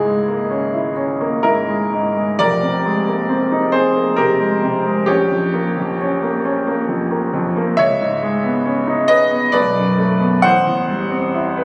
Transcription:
Already playing: C#2 G#2 E4 G#4
0.05 G#3
0.28 A#3
0.50 C#4
0.73 E4
0.96 C#4
1.21 A#3
1.43 G#2 E4 A#4
1.69 G#3
1.93 G#2
2.16 G#3
2.39 F1 F2 A#4 D5
2.63 C3
2.86 G#3
3.08 A#3
3.29 C4
3.52 D#4
3.72 C4 G#4 C5
3.96 A#3
4.16 C3 G4 A#4
4.40 G#3
4.63 C3
4.86 G#3
5.06 A#1 C#4 G4
5.30 F2
5.54 A#3
5.77 F2
6.01 C#4
6.23 A#3
6.45 C#4
6.67 A#3
6.88 F2
7.11 A#3
7.33 F2
7.56 A#3
7.77 C#2 C#5 E5
8.01 G#2
8.23 G#3
8.44 B3
8.65 C#4
8.87 D#4
9.08 C#4 B4 D#5
9.31 B3
9.52 B1 B4 D5
9.75 F#2
9.98 A3
10.20 B3
10.42 A1 C5 F#5
10.67 E2
10.89 G3
11.11 C4
11.34 E4
11.57 B4

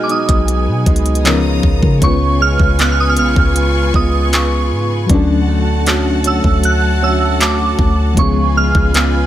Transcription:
Already playing: B2 F#3 G#3 B3 D#4 F#4 G#4 G#5
0.03 D6
0.09 D#4 D#6, closed hi-hat
0.29 B1, kick, closed hi-hat
0.48 closed hi-hat
0.67 B2
0.86 C#2 G#3, kick, closed hi-hat
0.96 closed hi-hat
1.06 closed hi-hat
1.15 closed hi-hat
1.24 C#3 F3 B3 C#4 D#4 F4 A#5 D#6, clap, closed hi-hat
1.28 A#4
1.63 C#2, kick
1.83 C#3, kick
1.99 C#2 C#3 G#3 B3 F4 B4 G#5 C#6, kick, closed hi-hat
2.03 C#4 F4 C#6
2.07 B4
2.40 G#3 F6
2.59 C#2, kick
2.79 G#3 B3 F4 F#6, clap, closed hi-hat
2.92 F6
3.00 D#6
3.09 F6
3.17 B1 B3 F6, closed hi-hat
3.36 C#2, kick
3.56 closed hi-hat
3.94 C#2 G#3 B3 F4 D#6, kick
4.32 G#3 C#6, clap, closed hi-hat
4.71 G#2
5.06 D2 D3 F#3 A3 F#4 F#5 A5, kick, closed hi-hat
5.11 C#4 D4
5.15 A4
5.48 A3
5.86 A3 C#4 F#4, clap, closed hi-hat
6.24 C#4 E6, closed hi-hat
6.44 D2, kick
6.63 F#6, closed hi-hat
7.02 A3 C#4 F#4 E6
7.40 A3 D6, clap, closed hi-hat
7.79 D2, kick
8.14 C#2 C#3 F3 G#3 F4 B4 G#5, kick, closed hi-hat
8.18 B3 C#4 C#6
8.22 G#4
8.56 G#3 F6
8.75 C#2, kick
8.94 G#3 B3 F4, clap, closed hi-hat

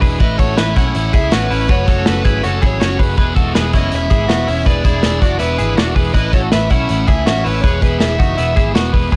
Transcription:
0.01 E1 G#3 D4 E4 G#4 B4, kick, open hi-hat
0.05 E3
0.20 A1 A2 E3 A3 C#4 E4 B4 D#5, kick, closed hi-hat
0.38 A1 C#4 E4 F#4 A4 C#5, kick, closed hi-hat
0.43 A3
0.57 A1 E3 A3 C#4 E4 B4 E5, snare, closed hi-hat
0.76 B1 A3 C#4 E4 F#5, kick, snare, closed hi-hat
0.95 A1 A2 E3 A3 C#4 E4, closed hi-hat
1.13 C#2 A3 C#4 E4 G#4 E5, kick, closed hi-hat
1.30 A1 E3 A3 C#4 E4 F#4 B4, snare, closed hi-hat
1.49 A1 A3 C#4 E4, open hi-hat
1.68 F#1 F#2 C#3 F#3 A3 C#4 F#4 B4 C#5, kick, closed hi-hat
1.87 F#1 F#3 A3 C#4 F#4 A4, kick, closed hi-hat
2.06 F#1 F#3 A3 C#4 F#4 B4, snare, closed hi-hat
2.24 G#1 F#3 A3 C#4 E4 F#4 G#4, kick, closed hi-hat
2.43 F#1 F#2 C#3 F#3 A3 C#4 F#4 A4, closed hi-hat
2.62 A1 F#3 A3 C#4 E4 F#4 G#4, kick, closed hi-hat
2.66 C#5
2.80 F#1 F#3 A3 C#4 F#4, snare, closed hi-hat
2.99 F#1 F#3 A3 C#4 F#4 G#4 B4, kick, open hi-hat
3.17 E1 E2 B2 E3 G#3 B3 E4 G#4 B4, kick, closed hi-hat
3.36 E1 E3 G#3 B3 E4 F#4 A4, kick, closed hi-hat
3.54 E1 E3 G#3 B3 E4 G#4 B4, snare, closed hi-hat
3.73 F#1 E3 G#3 B3 C#4 E4 D#5, kick, snare, closed hi-hat
3.92 E1 E2 B2 E3 G#3 B3 E4 E5, closed hi-hat
4.10 G#1 E3 G#3 B3 E4 G#4, kick, closed hi-hat
4.28 E1 E3 G#3 B3 E4 F#4, snare, closed hi-hat
4.46 E1 E3 G#3 B3 C#4 E4, open hi-hat
4.66 E1 E2 B2 E3 G#3 D4 E4 G#4 B4 D5, kick, closed hi-hat
4.84 E1 E3 G#3 D4 E4 G#4, kick, closed hi-hat
5.03 E1 E3 G#3 D4 E4, snare, closed hi-hat
5.21 E3 G#3 D4 E4 F#4, kick, closed hi-hat
5.39 E1 E2 B2 E3 G#3 B3 D4 E4 B4, closed hi-hat
5.58 G#1 E3 G#3 D4 E4 G#4, closed hi-hat
5.77 E1 E3 G#3 D4 E4 F#4, snare, closed hi-hat
5.95 E1 E3 G#3 D4 E4 G#4 B4, kick, open hi-hat
6.14 A1 A2 E3 A3 C#4 E4 B4 D#5, kick, closed hi-hat
6.33 A1 A3 C#4 E4 F#4 A4 C#5, kick, closed hi-hat
6.52 A1 E3 A3 C#4 E4 B4 E5, snare, closed hi-hat
6.70 B1 A3 C#4 E4 F#5, kick, closed hi-hat
6.89 A1 A2 E3 A3 C#4 E4, closed hi-hat
7.07 C#2 A3 C#4 E4 G#4 E5, kick, closed hi-hat
7.26 A1 E3 A3 C#4 E4 F#4, snare, closed hi-hat
7.44 A1 A3 C#4 E4 B4, open hi-hat
7.61 E1 E2 B2 E3 G#3 B3 E4 G#4 B4 C#5, kick, closed hi-hat
7.81 E1 E3 G#3 B3 E4 G#4 B4, kick, closed hi-hat
7.99 E1 E3 G#3 B3 E4 E5, snare, closed hi-hat
8.18 F#1 E3 G#3 B3 D#4 E4 F#4, kick, closed hi-hat
8.37 E1 E2 B2 E3 G#3 B3 E4, closed hi-hat
8.56 G#1 E3 G#3 B3 E4 G#4, kick, closed hi-hat
8.74 E1 E3 G#3 B3 E4 F#4, snare, closed hi-hat
8.93 E1 E3 G#3 B3 E4 G#4 B4, kick, open hi-hat
9.12 E1 E2 B2 G#4 B4, kick, closed hi-hat

